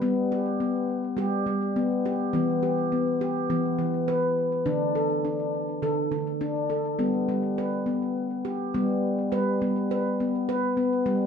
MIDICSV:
0, 0, Header, 1, 2, 480
1, 0, Start_track
1, 0, Key_signature, 1, "major"
1, 0, Tempo, 581395
1, 15, Time_signature, 4, 2, 24, 8
1, 9300, End_track
2, 0, Start_track
2, 0, Title_t, "Handpan"
2, 0, Program_c, 0, 114
2, 13, Note_on_c, 0, 55, 75
2, 18, Note_on_c, 0, 59, 74
2, 256, Note_off_c, 0, 59, 0
2, 263, Note_on_c, 0, 67, 64
2, 498, Note_off_c, 0, 67, 0
2, 498, Note_on_c, 0, 59, 67
2, 786, Note_off_c, 0, 55, 0
2, 963, Note_on_c, 0, 55, 77
2, 974, Note_off_c, 0, 59, 0
2, 974, Note_on_c, 0, 67, 73
2, 1160, Note_off_c, 0, 55, 0
2, 1209, Note_on_c, 0, 55, 74
2, 1452, Note_off_c, 0, 67, 0
2, 1455, Note_on_c, 0, 59, 71
2, 1692, Note_off_c, 0, 59, 0
2, 1697, Note_on_c, 0, 67, 66
2, 1790, Note_off_c, 0, 55, 0
2, 1926, Note_on_c, 0, 52, 81
2, 1933, Note_off_c, 0, 67, 0
2, 1937, Note_on_c, 0, 59, 68
2, 2168, Note_on_c, 0, 67, 62
2, 2173, Note_off_c, 0, 59, 0
2, 2409, Note_off_c, 0, 67, 0
2, 2411, Note_on_c, 0, 59, 69
2, 2650, Note_off_c, 0, 59, 0
2, 2652, Note_on_c, 0, 67, 68
2, 2702, Note_off_c, 0, 52, 0
2, 2889, Note_on_c, 0, 52, 80
2, 2889, Note_on_c, 0, 59, 72
2, 2891, Note_off_c, 0, 67, 0
2, 3083, Note_off_c, 0, 52, 0
2, 3125, Note_on_c, 0, 52, 74
2, 3369, Note_on_c, 0, 71, 72
2, 3370, Note_off_c, 0, 59, 0
2, 3709, Note_off_c, 0, 52, 0
2, 3845, Note_on_c, 0, 62, 77
2, 3846, Note_on_c, 0, 50, 85
2, 3850, Note_off_c, 0, 71, 0
2, 4088, Note_off_c, 0, 62, 0
2, 4089, Note_on_c, 0, 69, 63
2, 4331, Note_off_c, 0, 69, 0
2, 4331, Note_on_c, 0, 62, 65
2, 4624, Note_off_c, 0, 50, 0
2, 4808, Note_on_c, 0, 50, 77
2, 4812, Note_off_c, 0, 62, 0
2, 4813, Note_on_c, 0, 69, 70
2, 5004, Note_off_c, 0, 50, 0
2, 5049, Note_on_c, 0, 50, 72
2, 5291, Note_on_c, 0, 62, 72
2, 5294, Note_off_c, 0, 69, 0
2, 5528, Note_on_c, 0, 69, 63
2, 5533, Note_off_c, 0, 62, 0
2, 5633, Note_off_c, 0, 50, 0
2, 5769, Note_on_c, 0, 55, 76
2, 5772, Note_off_c, 0, 69, 0
2, 5773, Note_on_c, 0, 59, 69
2, 5965, Note_off_c, 0, 55, 0
2, 6015, Note_on_c, 0, 55, 70
2, 6254, Note_off_c, 0, 59, 0
2, 6259, Note_on_c, 0, 71, 63
2, 6490, Note_on_c, 0, 59, 62
2, 6497, Note_off_c, 0, 71, 0
2, 6791, Note_off_c, 0, 55, 0
2, 6973, Note_off_c, 0, 59, 0
2, 6975, Note_on_c, 0, 67, 68
2, 7215, Note_off_c, 0, 67, 0
2, 7218, Note_on_c, 0, 59, 73
2, 7219, Note_on_c, 0, 55, 89
2, 7605, Note_off_c, 0, 55, 0
2, 7693, Note_on_c, 0, 55, 80
2, 7697, Note_off_c, 0, 59, 0
2, 7697, Note_on_c, 0, 71, 70
2, 7888, Note_off_c, 0, 55, 0
2, 7936, Note_off_c, 0, 71, 0
2, 7938, Note_on_c, 0, 55, 70
2, 7941, Note_on_c, 0, 59, 65
2, 8178, Note_off_c, 0, 59, 0
2, 8183, Note_on_c, 0, 71, 66
2, 8419, Note_off_c, 0, 71, 0
2, 8424, Note_on_c, 0, 59, 64
2, 8659, Note_off_c, 0, 59, 0
2, 8659, Note_on_c, 0, 71, 73
2, 8711, Note_off_c, 0, 55, 0
2, 8892, Note_on_c, 0, 59, 69
2, 8896, Note_off_c, 0, 71, 0
2, 9131, Note_on_c, 0, 55, 88
2, 9300, Note_off_c, 0, 55, 0
2, 9300, Note_off_c, 0, 59, 0
2, 9300, End_track
0, 0, End_of_file